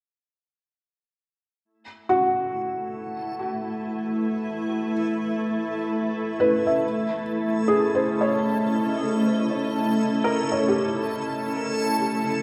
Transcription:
1.65 12.43 A3 medium
1.65 6.83 A3 medium
1.65 12.43 E4 medium
1.65 12.43 A4 medium
1.97 6.83 B4 medium
2.04 6.84 E4 medium
2.09 4.91 F#4 medium
2.52 8.87 E5 medium
6.40 7.21 B4 medium
6.67 7.45 E5 soft
6.83 12.00 C#4 medium
7.38 12.00 D#5 medium
7.68 10.47 G#4 medium
7.95 10.72 C5 soft
8.21 10.50 C#5 soft
10.24 12.40 A#4 medium
10.52 12.43 C#5 soft
10.68 12.40 G4 medium
12.00 12.43 F3 medium

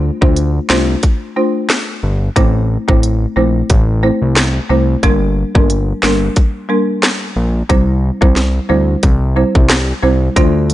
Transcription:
0.00 0.11 D2 loud
0.21 0.60 D2 loud
0.21 0.66 A3 medium
0.21 0.66 D4 medium
0.21 0.66 F4 medium
0.21 0.66 C5 medium
0.21 kick medium
0.36 closed hi-hat medium
0.70 0.96 C2 medium
0.70 1.01 A3 medium
0.70 1.01 D4 medium
0.70 1.01 F4 medium
0.70 1.01 C5 medium
0.70 snare loud
0.70 clap medium
1.03 kick medium
1.03 closed hi-hat medium
1.36 1.59 A3 medium
1.36 1.59 D4 medium
1.36 1.59 F4 medium
1.36 1.59 C5 medium
1.70 cross-stick medium
1.70 snare loud
1.70 clap medium
1.70 closed hi-hat medium
2.03 2.29 G1 medium
2.36 2.78 A1 loud
2.36 2.58 A3 medium
2.36 2.59 C4 medium
2.36 2.59 E4 medium
2.36 2.59 C5 loud
2.36 kick loud
2.36 closed hi-hat medium
2.88 3.26 A1 medium
2.88 3.33 A3 medium
2.88 3.33 C4 medium
2.88 3.33 E4 medium
2.88 3.33 C5 medium
2.88 kick medium
3.03 closed hi-hat medium
3.36 3.63 A#1 loud
3.36 3.67 A3 medium
3.36 3.67 C4 medium
3.36 3.68 E4 medium
3.36 3.68 C5 medium
3.70 4.11 A1 loud
3.70 kick medium
3.70 closed hi-hat medium
4.03 4.25 A3 medium
4.03 4.25 C4 medium
4.03 4.25 E4 medium
4.03 4.26 C5 medium
4.22 4.60 C2 medium
4.36 cross-stick medium
4.36 snare loud
4.36 clap medium
4.36 closed hi-hat medium
4.70 4.96 C2 loud
4.70 4.92 A3 medium
4.70 4.92 C4 medium
4.70 4.92 E4 medium
4.70 4.92 C5 medium
5.03 5.44 G1 loud
5.03 5.25 G3 medium
5.03 5.25 A#3 medium
5.03 5.26 D4 medium
5.03 5.26 A#4 loud
5.03 kick loud
5.03 closed hi-hat medium
5.55 5.93 G1 loud
5.55 5.99 G3 medium
5.55 6.00 A#3 medium
5.55 6.00 D4 medium
5.55 6.00 A#4 medium
5.55 kick loud
5.70 closed hi-hat medium
6.03 6.30 G1 medium
6.03 6.34 G3 medium
6.03 6.34 A#3 medium
6.03 6.34 D4 medium
6.03 6.34 A#4 medium
6.03 snare loud
6.03 clap medium
6.36 kick medium
6.36 closed hi-hat medium
6.69 6.92 G3 medium
6.69 6.92 A#3 medium
6.69 6.92 D4 medium
6.69 6.92 A#4 medium
7.03 cross-stick medium
7.03 snare loud
7.03 clap medium
7.03 closed hi-hat medium
7.36 7.63 A#1 loud
7.69 8.11 C2 loud
7.69 7.92 G3 loud
7.69 7.92 C4 medium
7.69 7.92 E4 medium
7.69 7.92 C5 loud
7.69 kick loud
7.69 closed hi-hat medium
8.21 8.60 C2 loud
8.21 8.66 G3 medium
8.21 8.66 C4 medium
8.21 8.66 E4 medium
8.21 8.66 C5 medium
8.21 kick medium
8.36 snare medium
8.36 closed hi-hat medium
8.69 8.96 D2 medium
8.69 9.00 G3 medium
8.69 9.01 C4 medium
8.69 9.01 E4 medium
8.69 9.01 C5 medium
9.03 9.44 C2 loud
9.03 kick medium
9.03 closed hi-hat medium
9.36 9.58 G3 medium
9.36 9.59 C4 medium
9.36 9.59 E4 medium
9.36 9.59 C5 medium
9.55 9.93 C2 medium
9.55 kick medium
9.70 cross-stick medium
9.70 snare loud
9.70 clap medium
9.70 closed hi-hat medium
10.03 10.29 C2 medium
10.03 10.25 G3 medium
10.03 10.25 C4 medium
10.03 10.25 E4 medium
10.03 10.25 C5 medium
10.36 10.74 D2 loud
10.36 10.59 A3 loud
10.36 10.59 D4 medium
10.36 10.59 F4 medium
10.36 10.59 C5 loud
10.36 kick loud
10.36 closed hi-hat medium
10.70 closed hi-hat medium

